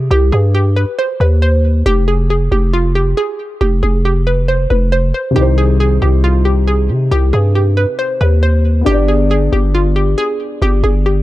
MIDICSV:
0, 0, Header, 1, 4, 480
1, 0, Start_track
1, 0, Key_signature, -3, "minor"
1, 0, Tempo, 437956
1, 116, Time_signature, 4, 2, 24, 8
1, 12305, End_track
2, 0, Start_track
2, 0, Title_t, "Synth pluck"
2, 0, Program_c, 0, 84
2, 121, Note_on_c, 0, 67, 97
2, 313, Note_off_c, 0, 67, 0
2, 354, Note_on_c, 0, 68, 83
2, 549, Note_off_c, 0, 68, 0
2, 598, Note_on_c, 0, 67, 93
2, 791, Note_off_c, 0, 67, 0
2, 838, Note_on_c, 0, 71, 85
2, 1031, Note_off_c, 0, 71, 0
2, 1081, Note_on_c, 0, 72, 99
2, 1272, Note_off_c, 0, 72, 0
2, 1324, Note_on_c, 0, 71, 83
2, 1514, Note_off_c, 0, 71, 0
2, 1558, Note_on_c, 0, 72, 91
2, 2009, Note_off_c, 0, 72, 0
2, 2037, Note_on_c, 0, 67, 117
2, 2231, Note_off_c, 0, 67, 0
2, 2277, Note_on_c, 0, 68, 84
2, 2470, Note_off_c, 0, 68, 0
2, 2524, Note_on_c, 0, 68, 80
2, 2714, Note_off_c, 0, 68, 0
2, 2760, Note_on_c, 0, 67, 83
2, 2952, Note_off_c, 0, 67, 0
2, 2997, Note_on_c, 0, 65, 98
2, 3190, Note_off_c, 0, 65, 0
2, 3237, Note_on_c, 0, 67, 84
2, 3430, Note_off_c, 0, 67, 0
2, 3477, Note_on_c, 0, 68, 97
2, 3928, Note_off_c, 0, 68, 0
2, 3955, Note_on_c, 0, 67, 90
2, 4149, Note_off_c, 0, 67, 0
2, 4195, Note_on_c, 0, 68, 83
2, 4389, Note_off_c, 0, 68, 0
2, 4441, Note_on_c, 0, 67, 87
2, 4632, Note_off_c, 0, 67, 0
2, 4677, Note_on_c, 0, 71, 81
2, 4871, Note_off_c, 0, 71, 0
2, 4914, Note_on_c, 0, 72, 80
2, 5108, Note_off_c, 0, 72, 0
2, 5154, Note_on_c, 0, 71, 72
2, 5348, Note_off_c, 0, 71, 0
2, 5395, Note_on_c, 0, 72, 94
2, 5589, Note_off_c, 0, 72, 0
2, 5637, Note_on_c, 0, 72, 80
2, 5830, Note_off_c, 0, 72, 0
2, 5873, Note_on_c, 0, 67, 107
2, 6068, Note_off_c, 0, 67, 0
2, 6113, Note_on_c, 0, 68, 90
2, 6308, Note_off_c, 0, 68, 0
2, 6359, Note_on_c, 0, 68, 87
2, 6551, Note_off_c, 0, 68, 0
2, 6596, Note_on_c, 0, 67, 74
2, 6790, Note_off_c, 0, 67, 0
2, 6838, Note_on_c, 0, 65, 92
2, 7031, Note_off_c, 0, 65, 0
2, 7071, Note_on_c, 0, 67, 76
2, 7267, Note_off_c, 0, 67, 0
2, 7316, Note_on_c, 0, 68, 87
2, 7767, Note_off_c, 0, 68, 0
2, 7798, Note_on_c, 0, 67, 111
2, 7991, Note_off_c, 0, 67, 0
2, 8034, Note_on_c, 0, 68, 81
2, 8228, Note_off_c, 0, 68, 0
2, 8279, Note_on_c, 0, 67, 79
2, 8471, Note_off_c, 0, 67, 0
2, 8517, Note_on_c, 0, 71, 82
2, 8710, Note_off_c, 0, 71, 0
2, 8754, Note_on_c, 0, 72, 92
2, 8949, Note_off_c, 0, 72, 0
2, 8995, Note_on_c, 0, 71, 84
2, 9189, Note_off_c, 0, 71, 0
2, 9236, Note_on_c, 0, 72, 88
2, 9688, Note_off_c, 0, 72, 0
2, 9713, Note_on_c, 0, 67, 119
2, 9908, Note_off_c, 0, 67, 0
2, 9956, Note_on_c, 0, 68, 79
2, 10150, Note_off_c, 0, 68, 0
2, 10202, Note_on_c, 0, 68, 86
2, 10393, Note_off_c, 0, 68, 0
2, 10441, Note_on_c, 0, 67, 86
2, 10633, Note_off_c, 0, 67, 0
2, 10681, Note_on_c, 0, 65, 96
2, 10873, Note_off_c, 0, 65, 0
2, 10915, Note_on_c, 0, 67, 85
2, 11109, Note_off_c, 0, 67, 0
2, 11155, Note_on_c, 0, 68, 103
2, 11607, Note_off_c, 0, 68, 0
2, 11642, Note_on_c, 0, 67, 105
2, 11833, Note_off_c, 0, 67, 0
2, 11876, Note_on_c, 0, 68, 80
2, 12070, Note_off_c, 0, 68, 0
2, 12121, Note_on_c, 0, 67, 77
2, 12305, Note_off_c, 0, 67, 0
2, 12305, End_track
3, 0, Start_track
3, 0, Title_t, "Grand piano"
3, 0, Program_c, 1, 0
3, 5816, Note_on_c, 1, 48, 66
3, 5855, Note_on_c, 1, 51, 60
3, 5893, Note_on_c, 1, 63, 65
3, 5932, Note_on_c, 1, 72, 77
3, 6089, Control_c, 1, 64, 127
3, 9643, Note_off_c, 1, 48, 0
3, 9659, Note_on_c, 1, 59, 67
3, 9662, Note_off_c, 1, 51, 0
3, 9681, Note_off_c, 1, 63, 0
3, 9698, Note_on_c, 1, 62, 70
3, 9701, Note_off_c, 1, 72, 0
3, 9731, Control_c, 1, 64, 0
3, 9736, Note_on_c, 1, 71, 60
3, 9775, Note_on_c, 1, 74, 74
3, 9929, Control_c, 1, 64, 127
3, 12305, Note_off_c, 1, 59, 0
3, 12305, Note_off_c, 1, 62, 0
3, 12305, Note_off_c, 1, 71, 0
3, 12305, Note_off_c, 1, 74, 0
3, 12305, End_track
4, 0, Start_track
4, 0, Title_t, "808-style bass"
4, 0, Program_c, 2, 38
4, 116, Note_on_c, 2, 36, 115
4, 347, Note_off_c, 2, 36, 0
4, 357, Note_on_c, 2, 43, 104
4, 933, Note_off_c, 2, 43, 0
4, 1317, Note_on_c, 2, 39, 109
4, 2008, Note_off_c, 2, 39, 0
4, 2037, Note_on_c, 2, 29, 113
4, 2728, Note_off_c, 2, 29, 0
4, 2757, Note_on_c, 2, 29, 105
4, 3448, Note_off_c, 2, 29, 0
4, 3956, Note_on_c, 2, 29, 109
4, 4187, Note_off_c, 2, 29, 0
4, 4196, Note_on_c, 2, 29, 104
4, 5118, Note_off_c, 2, 29, 0
4, 5156, Note_on_c, 2, 29, 109
4, 5617, Note_off_c, 2, 29, 0
4, 5877, Note_on_c, 2, 36, 109
4, 6568, Note_off_c, 2, 36, 0
4, 6597, Note_on_c, 2, 36, 103
4, 7557, Note_on_c, 2, 48, 102
4, 7574, Note_off_c, 2, 36, 0
4, 7785, Note_off_c, 2, 48, 0
4, 7797, Note_on_c, 2, 36, 116
4, 8027, Note_off_c, 2, 36, 0
4, 8037, Note_on_c, 2, 43, 104
4, 8613, Note_off_c, 2, 43, 0
4, 8997, Note_on_c, 2, 39, 108
4, 9688, Note_off_c, 2, 39, 0
4, 9717, Note_on_c, 2, 31, 113
4, 10408, Note_off_c, 2, 31, 0
4, 10437, Note_on_c, 2, 31, 101
4, 11128, Note_off_c, 2, 31, 0
4, 11637, Note_on_c, 2, 31, 116
4, 11867, Note_off_c, 2, 31, 0
4, 11877, Note_on_c, 2, 31, 104
4, 12305, Note_off_c, 2, 31, 0
4, 12305, End_track
0, 0, End_of_file